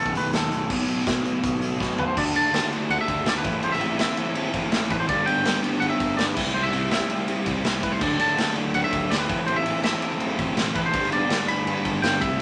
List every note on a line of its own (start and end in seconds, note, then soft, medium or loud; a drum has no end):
0.00 0.68 B2 medium
0.00 0.68 D#3 medium
0.00 0.69 F#3 medium
0.00 0.69 B3 loud
0.00 0.70 D#4 loud
0.00 0.15 A4 medium
0.06 0.16 F#2 medium
0.06 kick medium
0.14 0.30 B1 medium
0.14 0.34 B4 loud
0.14 closed hi-hat medium
0.33 0.49 D#2 medium
0.33 0.69 A4 loud
0.33 snare loud
0.33 closed hi-hat medium
0.51 0.68 B1 medium
0.51 closed hi-hat medium
0.69 1.01 B1 medium
0.69 1.23 B2 medium
0.69 1.24 F#3 medium
0.69 1.24 B3 medium
0.69 1.22 D#4 medium
0.69 kick loud
0.69 crash loud
0.88 closed hi-hat medium
0.99 snare soft
1.07 1.38 B2 medium
1.07 kick loud
1.07 snare loud
1.07 closed hi-hat loud
1.23 2.15 B2 medium
1.23 2.16 F#3 medium
1.23 2.15 B3 medium
1.23 2.15 D#4 medium
1.23 closed hi-hat medium
1.43 1.75 B2 loud
1.43 kick loud
1.43 closed hi-hat medium
1.62 closed hi-hat medium
1.80 2.12 B2 medium
1.80 kick loud
1.80 snare medium
1.99 2.07 B4 medium
1.99 floor tom medium
2.08 2.17 C5 medium
2.16 2.32 D2 loud
2.16 2.51 D3 medium
2.16 2.37 A3 medium
2.16 2.34 D4 loud
2.16 2.32 F#4 loud
2.16 2.23 D5 loud
2.16 kick loud
2.16 crash loud
2.34 2.53 A3 medium
2.34 2.54 D4 medium
2.34 2.54 F#4 medium
2.34 2.69 A5 loud
2.34 ride medium
2.52 2.89 D3 medium
2.52 2.73 A3 medium
2.52 2.71 D4 medium
2.52 2.69 F#4 medium
2.52 snare loud
2.52 ride loud
2.70 3.25 A3 medium
2.70 3.26 D4 medium
2.70 3.27 F#4 medium
2.70 ride medium
2.89 2.97 D2 loud
2.89 2.99 F#5 loud
2.89 ride loud
3.01 3.28 E5 loud
3.08 3.39 D2 medium
3.08 kick medium
3.08 ride medium
3.25 3.43 D3 loud
3.25 3.43 A3 loud
3.25 3.44 D4 loud
3.25 3.42 F#4 loud
3.25 3.36 D5 loud
3.25 snare loud
3.25 ride loud
3.38 3.62 B4 medium
3.43 4.08 A1 loud
3.43 3.61 A2 medium
3.43 3.62 E3 medium
3.43 3.63 A3 medium
3.43 3.63 C4 medium
3.43 3.64 E4 loud
3.43 kick loud
3.43 ride medium
3.62 3.99 A2 medium
3.62 3.98 E3 medium
3.62 3.82 A3 loud
3.62 3.81 C4 loud
3.62 3.79 E4 loud
3.62 3.72 C5 medium
3.62 ride loud
3.72 3.97 E5 loud
3.72 snare soft
3.80 3.99 A3 medium
3.80 4.00 C4 medium
3.80 4.01 E4 medium
3.80 ride medium
3.99 4.36 E3 medium
3.99 4.19 A3 medium
3.99 4.18 C4 medium
3.99 4.16 E4 medium
3.99 4.34 E5 medium
3.99 snare loud
3.99 ride loud
4.17 4.72 A3 medium
4.17 4.72 C4 medium
4.17 4.73 E4 medium
4.17 ride medium
4.35 ride loud
4.54 4.85 A1 medium
4.54 kick medium
4.54 ride medium
4.71 5.06 A2 loud
4.71 5.07 E3 loud
4.71 4.92 A3 loud
4.71 4.90 C4 loud
4.71 4.88 E4 loud
4.71 snare loud
4.71 ride loud
4.89 5.06 A1 loud
4.89 5.09 A3 medium
4.89 5.08 C4 medium
4.89 5.07 E4 medium
4.89 4.99 B4 medium
4.89 kick medium
4.89 ride medium
5.00 5.09 C5 medium
5.07 5.24 G1 loud
5.07 5.44 G2 loud
5.07 5.42 D3 loud
5.07 5.28 G3 loud
5.07 5.26 B3 loud
5.07 5.24 D4 loud
5.07 5.26 D5 loud
5.07 kick loud
5.07 ride loud
5.25 5.44 G3 medium
5.25 5.45 B3 medium
5.25 5.45 D4 medium
5.25 5.60 G5 loud
5.25 ride medium
5.43 5.81 D3 medium
5.43 5.65 G3 medium
5.43 5.62 B3 medium
5.43 5.60 D4 medium
5.43 snare loud
5.43 ride loud
5.62 6.18 G3 medium
5.62 6.19 B3 medium
5.62 6.20 D4 medium
5.62 ride medium
5.80 5.89 G1 loud
5.80 5.89 F#5 loud
5.80 ride loud
5.90 6.18 E5 loud
6.00 6.32 G1 medium
6.00 kick medium
6.00 ride medium
6.17 6.35 G2 medium
6.17 6.35 D3 loud
6.17 6.36 G3 loud
6.17 6.36 B3 loud
6.17 6.35 D4 loud
6.17 6.26 D5 medium
6.17 snare loud
6.17 ride loud
6.26 6.54 B4 medium
6.35 7.00 C2 loud
6.35 6.52 C3 medium
6.35 6.53 G3 medium
6.35 6.55 C4 medium
6.35 6.56 E4 loud
6.35 kick loud
6.35 crash loud
6.54 6.89 C3 medium
6.54 6.74 G3 medium
6.54 6.73 C4 loud
6.54 6.71 E4 loud
6.54 6.64 C5 medium
6.63 6.90 E5 loud
6.72 6.91 G3 medium
6.72 6.92 C4 medium
6.72 6.93 E4 medium
6.72 ride medium
6.91 7.28 C3 medium
6.91 7.12 G3 medium
6.91 7.10 C4 medium
6.91 7.08 E4 medium
6.91 7.25 E5 medium
6.91 snare loud
6.91 ride loud
7.10 7.64 G3 medium
7.10 7.65 C4 medium
7.10 7.66 E4 medium
7.10 ride medium
7.28 ride loud
7.46 7.78 C2 medium
7.46 kick medium
7.46 ride medium
7.63 7.99 C3 medium
7.63 7.84 G3 loud
7.63 7.83 C4 loud
7.63 7.81 E4 loud
7.63 snare loud
7.63 ride loud
7.82 7.99 C2 medium
7.82 8.01 G3 medium
7.82 8.00 C4 medium
7.82 7.99 E4 medium
7.82 7.92 B4 loud
7.82 kick medium
7.82 ride medium
7.92 8.02 C5 medium
8.00 8.17 D2 loud
8.00 8.36 D3 medium
8.00 8.20 F#3 medium
8.00 8.19 A3 loud
8.00 8.17 D4 loud
8.00 8.20 D5 loud
8.00 kick loud
8.00 crash loud
8.18 8.37 F#3 medium
8.18 8.39 A3 medium
8.18 8.39 D4 medium
8.18 8.54 A5 loud
8.18 ride medium
8.37 8.74 D3 medium
8.37 8.57 F#3 medium
8.37 8.57 A3 medium
8.37 8.54 D4 medium
8.37 snare loud
8.37 ride loud
8.55 9.11 F#3 medium
8.55 9.12 A3 medium
8.55 9.13 D4 medium
8.55 ride medium
8.74 8.82 D2 loud
8.74 8.83 F#5 loud
8.74 ride loud
8.84 9.12 E5 loud
8.93 9.24 D2 loud
8.93 kick medium
8.93 ride medium
9.10 9.28 D3 medium
9.10 9.29 F#3 medium
9.10 9.29 A3 loud
9.10 9.29 D4 loud
9.10 9.19 D5 medium
9.10 snare loud
9.10 ride loud
9.20 9.45 B4 medium
9.29 9.92 A1 medium
9.29 9.46 A2 medium
9.29 9.47 E3 medium
9.29 9.47 A3 medium
9.29 9.48 C4 loud
9.29 9.49 E4 loud
9.29 kick loud
9.29 ride medium
9.47 9.84 A2 medium
9.47 9.82 E3 loud
9.47 9.68 A3 loud
9.47 9.66 C4 medium
9.47 9.64 E4 medium
9.47 9.56 C5 loud
9.47 ride medium
9.56 9.83 E5 loud
9.65 9.83 A3 medium
9.65 9.84 C4 medium
9.65 9.85 E4 medium
9.65 ride medium
9.83 10.20 E3 medium
9.83 10.04 A3 medium
9.83 10.03 C4 medium
9.83 10.00 E4 medium
9.83 10.18 E5 medium
9.83 snare loud
9.83 ride loud
10.01 10.57 A3 medium
10.01 10.58 C4 medium
10.01 10.58 E4 medium
10.01 ride medium
10.20 ride loud
10.39 10.70 A1 medium
10.39 kick medium
10.39 ride medium
10.56 10.91 A2 medium
10.56 10.92 E3 loud
10.56 10.77 A3 loud
10.56 10.75 C4 loud
10.56 10.73 E4 loud
10.56 snare loud
10.56 ride loud
10.74 10.91 A1 medium
10.74 10.93 A3 medium
10.74 10.93 C4 medium
10.74 10.92 E4 medium
10.74 10.84 B4 medium
10.74 kick medium
10.74 ride medium
10.86 11.13 C5 medium
10.91 11.09 G1 loud
10.91 11.29 G2 medium
10.91 11.26 D3 loud
10.91 11.13 G3 medium
10.91 11.11 B3 loud
10.91 11.09 D4 loud
10.91 kick loud
10.91 ride loud
11.03 snare soft
11.10 11.29 G3 medium
11.10 11.29 B3 medium
11.10 11.30 D4 medium
11.10 11.50 D5 loud
11.10 ride medium
11.28 11.65 D3 medium
11.28 11.50 G3 medium
11.28 11.48 B3 medium
11.28 11.46 D4 loud
11.28 snare loud
11.28 ride loud
11.47 12.03 G3 medium
11.47 12.04 B3 medium
11.47 12.05 D4 medium
11.47 11.99 B5 loud
11.47 ride medium
11.66 11.74 G1 loud
11.66 ride loud
11.85 12.16 G1 medium
11.85 kick medium
11.85 ride medium
12.02 12.20 G2 medium
12.02 12.20 D3 loud
12.02 12.21 G3 loud
12.02 12.21 B3 loud
12.02 12.21 D4 loud
12.02 12.21 G5 loud
12.02 snare loud
12.02 ride loud
12.21 12.42 C2 loud
12.21 12.37 C3 medium
12.21 12.39 G3 medium
12.21 12.40 C4 medium
12.21 12.41 E4 medium
12.21 12.42 E5 loud
12.21 kick loud
12.21 ride medium
12.38 12.42 C3 loud